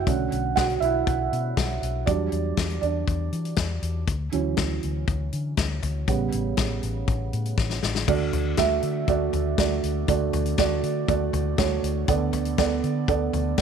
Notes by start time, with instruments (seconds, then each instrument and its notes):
Already playing: felt piano F#4 F#5
0.06 fingered electric bass B1, felt piano D3 A3 C#4, kick, closed hi-hat
0.32 fingered electric bass B1, closed hi-hat
0.56 fingered electric bass B1, felt piano F#4 F#5, kick, snare, closed hi-hat
0.70 closed hi-hat
0.80 fingered electric bass B1, felt piano E4 E5, closed hi-hat
1.07 fingered electric bass B1, kick, closed hi-hat
1.32 fingered electric bass B2, closed hi-hat
1.57 fingered electric bass B1, kick, snare, closed hi-hat
1.82 fingered electric bass B1, closed hi-hat
2.06 fingered electric bass E2, felt piano F#3 G3 D4 D5, kick, closed hi-hat
2.32 fingered electric bass E2, closed hi-hat
2.57 fingered electric bass E2, kick, snare, closed hi-hat
2.70 closed hi-hat
2.81 fingered electric bass E2, felt piano D4 D5, closed hi-hat
3.08 fingered electric bass E2, kick, closed hi-hat
3.32 fingered electric bass E3, closed hi-hat
3.45 closed hi-hat
3.56 fingered electric bass E2, kick, snare, closed hi-hat
3.82 fingered electric bass E2, closed hi-hat
4.08 fingered electric bass D2, kick, closed hi-hat
4.32 fingered electric bass D2, felt piano E3 F#3 C#4, closed hi-hat
4.57 fingered electric bass D2, kick, snare, closed hi-hat
4.83 fingered electric bass D2, closed hi-hat
5.08 fingered electric bass D2, kick, closed hi-hat
5.33 fingered electric bass D3, closed hi-hat
5.57 fingered electric bass D2, kick, snare, closed hi-hat
5.83 fingered electric bass D2, closed hi-hat, floor tom
6.08 fingered electric bass A1, felt piano C#3 G3 B3, kick, closed hi-hat
6.32 fingered electric bass A1, closed hi-hat
6.57 fingered electric bass A1, kick, snare, closed hi-hat
6.83 fingered electric bass A1, closed hi-hat
7.08 fingered electric bass A1, kick, closed hi-hat
7.33 fingered electric bass A2, closed hi-hat
7.45 closed hi-hat
7.58 fingered electric bass A1, kick, snare
7.70 snare
7.83 fingered electric bass A1, snare
7.95 snare
8.07 fingered electric bass D2, felt piano D3 A3 F#4 D5, kick, crash
8.33 fingered electric bass D2, closed hi-hat, floor tom
8.57 fingered electric bass D2, felt piano A3 F#4 E5, kick, snare, closed hi-hat
8.82 fingered electric bass D3, closed hi-hat
9.08 fingered electric bass D2, felt piano A3 F#4 D5, kick, closed hi-hat
9.33 fingered electric bass D2, closed hi-hat, floor tom
9.58 fingered electric bass D2, felt piano A3 F#4 D5, kick, snare, closed hi-hat
9.83 fingered electric bass D2, closed hi-hat
10.08 fingered electric bass D2, felt piano D3 A3 F#4 D5, kick, closed hi-hat
10.33 fingered electric bass D2, closed hi-hat, floor tom
10.46 closed hi-hat
10.58 fingered electric bass D2, felt piano A3 F#4 D5, kick, snare, closed hi-hat
10.83 fingered electric bass D3, closed hi-hat
11.08 fingered electric bass D2, felt piano A3 F#4 D5, kick, closed hi-hat
11.33 fingered electric bass D2, closed hi-hat, floor tom
11.58 fingered electric bass D2, felt piano A3 F#4 C#5, kick, snare, closed hi-hat
11.83 fingered electric bass D2, closed hi-hat
12.08 fingered electric bass D2, felt piano D3 B3 A4 D5, kick, closed hi-hat
12.33 fingered electric bass D2, closed hi-hat, floor tom
12.45 closed hi-hat
12.58 fingered electric bass D2, felt piano B3 A4 D5, kick, snare, closed hi-hat
12.83 fingered electric bass D3, closed hi-hat
13.08 fingered electric bass D2, felt piano B3 A4 D5, kick, closed hi-hat
13.33 fingered electric bass D2, closed hi-hat, floor tom
13.58 fingered electric bass D2, felt piano B3 A4, kick, snare, closed hi-hat